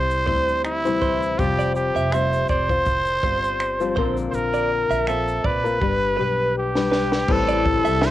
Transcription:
Already playing: C2 G3 C4 E4 C5
0.11 shaker
0.27 D2 G3 C4 E4 C5, kick
0.49 shaker
0.64 E4, finger snap, shaker
0.85 C3 E3 G3 C4 E4 C5, shaker
1.02 C5, kick, shaker
1.22 shaker
1.38 F1 F3 G3 C4 F4 G4 C5, kick, shaker
1.59 D5, shaker
1.75 G4, shaker
1.95 F1 E5, shaker
2.12 G3 C4 F4 C5 E5, finger snap, shaker
2.33 shaker
2.48 F1 C5 D5, kick, shaker
2.69 C4 F4 C5, kick, shaker
2.86 kick, shaker
3.05 shaker
3.23 G1 G3 C4 F4 C5, kick
3.44 shaker
3.60 finger snap, shaker
3.80 F3 G3 C4 F4 C5, shaker
3.96 A#1 A#2 D3 A#3 C4 F4 A#4 C5, kick
4.17 shaker
4.30 A#1 C5, shaker
4.35 A#4
4.54 D5, shaker
4.90 A#1 E5, shaker
5.07 A#3 C4 F4 A4 E5, finger snap, shaker
5.28 shaker
5.44 A#1 B4 D5, kick
5.64 A#3 C4 F4 A#4, shaker
5.81 G1 G3 D4 G4 B4, kick
6.17 B1 G3 D4 G4 B4
6.58 G4
6.75 G3 D4 G4 B4, snare
6.91 B4, snare
7.12 snare
7.28 A1 A2 E3 G3 C4 E4 A4, kick, crash
7.48 D5, shaker
7.66 kick
7.85 C2 G3 C4 E4 A4 E5, shaker
8.01 E5, snare, shaker
8.06 C5

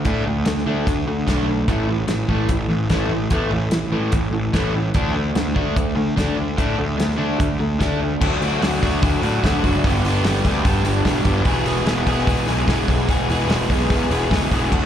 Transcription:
0.05 A2 D3 A3 D4, kick, closed hi-hat
0.25 D2 D3 A3
0.45 D2 D3 A3, snare, closed hi-hat
0.58 snare
0.66 D2 D3 A3 D4
0.87 D2 D3 A3, kick, closed hi-hat
1.06 D2 D3 A3
1.27 B1 D3 A3 D4, kick, snare, closed hi-hat
1.48 D3 A3
1.68 A1 A2 E3 A3, kick, closed hi-hat
1.88 A2 E3
2.07 A1 A2 E3, snare, closed hi-hat
2.28 A1 A2 E3 A3, kick
2.49 A1 A2 E3, kick, closed hi-hat
2.69 A1 A2 E3
2.90 A1 A2 E3 A3, kick, snare, closed hi-hat
3.09 A1 A2 E3
3.30 E2 A2 E3 A3, kick, closed hi-hat
3.50 A1 A2 E3
3.70 A1 A2 E3, snare, closed hi-hat
3.91 A1 A2 E3 A3
4.12 A1 A2 E3, kick, closed hi-hat
4.31 A1 A2 E3
4.53 A1 A2 E3 A3, kick, snare, closed hi-hat
4.74 A2 E3
4.94 D2 D3 A3 D4, kick, closed hi-hat
5.15 D3 A3
5.35 D2 D3 A3, snare, closed hi-hat
5.55 D2 D3 A3 D4, kick
5.76 D2 D3 A3, kick, closed hi-hat
5.96 D2 D3 A3
6.16 D2 D3 A3 D4, kick, snare, closed hi-hat
6.37 D2 D3 A3
6.57 A2 D3 A3 D4, kick, closed hi-hat
6.77 D2 D3 A3
6.97 D2 D3 A3, snare, closed hi-hat
7.10 snare
7.17 D2 D3 A3 D4
7.39 D2 D3 A3, kick, closed hi-hat
7.59 D2 D3 A3
7.79 D2 D3 A3 D4, kick, snare, closed hi-hat
8.01 D3 A3
8.21 D2 D3 F#3 A3 D4 F#4, kick, crash
8.41 D2 D3 F#3 A3 D4 F#4, open hi-hat
8.60 D2 D3 F#3 A3 D4 F#4, snare, open hi-hat
8.81 D2 D3 F#3 A3 D4 F#4, kick, open hi-hat
9.02 D2 D3 F#3 A3 D4 F#4, kick, open hi-hat
9.22 A2 D3 F#3 A3 D4 F#4, open hi-hat
9.43 D2 D3 F#3 A3 D4 F#4, kick, snare, open hi-hat
9.63 F#1 D3 F#3 A3 D4 F#4, kick, open hi-hat
9.84 G1 G2 D3 G3 B3 D4 G4, kick, open hi-hat
10.03 G1 G2 D3 G3 B3 D4, open hi-hat
10.08 G4
10.23 G1 G2 D3 G3 B3 D4, snare, open hi-hat
10.27 G4
10.36 snare
10.44 D2 G2 D3 G3 B3 D4 G4, kick, open hi-hat
10.64 G2 D3 G3 B3 D4 G4, kick, open hi-hat
10.83 G1 G2 D3 G3 B3 D4 G4, open hi-hat
11.04 E1 G2 D3 G3 B3 D4 G4, kick, snare, open hi-hat
11.24 G1 G2 D3 G3 B3 D4 G4, kick, open hi-hat
11.45 E1 E2 B2 E3 G#3 B3 G#4, kick, open hi-hat
11.65 E1 E2 B2 E3 G#3 B3 G#4, open hi-hat
11.85 E1 E2 B2 E3 G#3 B3 G#4, snare, open hi-hat
11.97 snare
12.05 E1 E2 B2 E3 G#3 B3 G#4, kick, open hi-hat
12.18 snare
12.26 E1 E2 B2 E3 G#3 B3 G#4, kick, open hi-hat
12.45 B1 E2 B2 E3 G#3 B3 G#4, open hi-hat
12.67 E1 E2 B2 E3 G#3 B3 G#4, kick, snare, open hi-hat
12.88 B1 E2 B2 E3 G#3 B3 G#4, kick, open hi-hat
13.08 E1 E2 B2 E3 G#3 B3 G#4, kick, open hi-hat
13.29 E1 E2 B2 E3 G#3 B3 G#4, open hi-hat
13.48 E1 E2 B2 E3 G#3 B3, snare, open hi-hat
13.52 G#4
13.61 snare
13.70 B1 E2 B2 E3 G#3 B3 G#4, kick, open hi-hat
13.90 E2 B2 E3 G#3 B3 G#4, kick, open hi-hat
14.09 E1 E2 B2 E3 G#3 B3 G#4, open hi-hat
14.29 D2 E2 B2 E3 G#3 B3 G#4, kick, snare, open hi-hat
14.50 E1 E2 B2 E3 G#3 B3 G#4, kick, open hi-hat
14.70 D2 D3 A3 D4 F#4, kick, crash

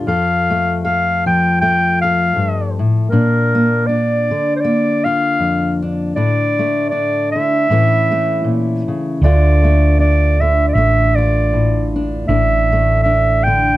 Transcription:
Already playing: F4
0.07 F2 A4 F5
0.50 A3
0.85 A4 F5
1.26 F3 G5
1.61 A3 G5
2.02 A4 F5
2.36 G2
2.79 A2
3.10 A#2 D4 A#4
3.55 A#3
3.86 D4 D5
4.31 D3
4.56 C5
4.61 A#3 D5
5.04 F4 F5
5.39 F2
5.82 D4
6.16 A2 D4 D5
6.59 A3
6.90 D4 D5
7.32 D3 E5
7.70 A2 E3 A3 C#4 E4
8.12 A3
8.44 A#2
8.88 C#3
9.22 D2 D3 A3 D4 D5
9.26 F4
9.64 A3
9.99 D4 D5
10.41 D3 E5
10.68 D5
10.74 A1 A3 E5
11.15 F4 D5
11.53 A2
11.96 D4
12.28 A1 A2 D4 E5
12.72 A3
13.03 D4 E5
13.44 D3 G5

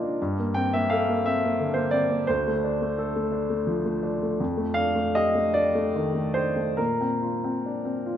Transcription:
Already playing: C3 A#3 D4 D#4 F4 C5 D#5 A#5 D6 F6
0.03 D4
0.22 G2
0.39 A#3
0.54 C4 G5
0.73 A#3 E5
0.90 A4 F5
1.08 A#3
1.26 C4 E5
1.44 A#3
1.60 D3
1.74 A#3 C5
1.91 C4 D5
2.10 A#3
2.27 D2 C5
2.48 A3
2.64 D4
2.82 A3
2.98 A4
3.16 A3
3.32 D4
3.50 A3
3.67 F3
3.86 A3
4.03 D4
4.23 A3
4.40 F2
4.57 A3
4.74 D4 F5
4.95 A3
5.15 G4 D#5
5.35 A3
5.54 D4 D5
5.75 A3
5.95 D#3
6.14 A3
6.34 D4 C5
6.56 A3
6.77 A#2 A#4
7.01 C4
7.22 F4
7.44 C4
7.66 D4
7.85 C4
8.06 F4

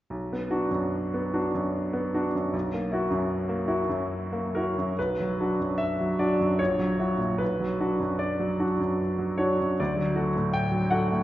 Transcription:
0.10 B1
0.33 B3
0.51 D4 F#4
0.71 F#2
1.14 B3
1.34 D4 F#4
1.54 F#2
1.93 B3
2.14 D4 F#4
2.35 F#2
2.53 B1
2.74 A#3
2.92 E4 F#4
3.10 F#2
3.49 A#3
3.68 E4 F#4
3.89 F#2
4.33 A#3
4.55 E4 F#4 A#4
4.78 F#2
4.99 B1 B4
5.20 F#3
5.40 D4 F#4
5.60 F#2
5.78 E5
6.01 F#3
6.19 D4 F#4 D5
6.40 F#2
6.59 A#1 C#5
6.79 F#3
6.99 E4 F#4
7.18 A#2
7.38 B1 B4
7.60 F#3
7.80 D4 F#4
8.00 F#2
8.19 D5
8.39 F#3
8.60 D4 F#4
8.79 F#2
9.18 F#3
9.38 D4 F#4 C#5
9.61 F#2
9.80 D2 D5
9.97 F#3
10.16 A3 F#4
10.36 A2
10.54 G5
10.72 F#3
10.90 A3 F#4 F#5
11.12 A2

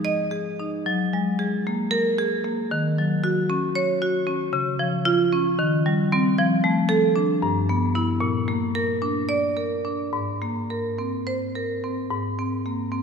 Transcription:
Already playing: F3 D#4
0.05 D#5
0.31 G#4
0.59 D#4
0.86 F#3
1.13 G#3
1.39 G#4
1.67 A#3
1.91 A#4
2.19 G#4
2.44 A#3
2.71 D#3
2.98 F#3
3.24 F#4
3.50 C#4
3.75 C#5
4.02 F#4
4.27 C#4
4.53 C#3
4.79 F3
5.05 F4
5.32 C#4
5.59 D#3
5.86 G3
6.12 G3 C4
6.38 F3
6.64 A3
6.89 A4
7.16 D4
7.42 G2
7.69 B3
7.95 B3 E4
8.20 A#2
8.48 A#3
8.75 A#4
9.02 D4
9.29 D5
9.57 A#4
9.85 D4
10.13 G#2
10.42 A#3
10.70 A#4
10.99 C4
11.27 C5
11.55 A#4
11.84 C4
12.10 G#2
12.39 C4
12.66 A#3
12.92 C4

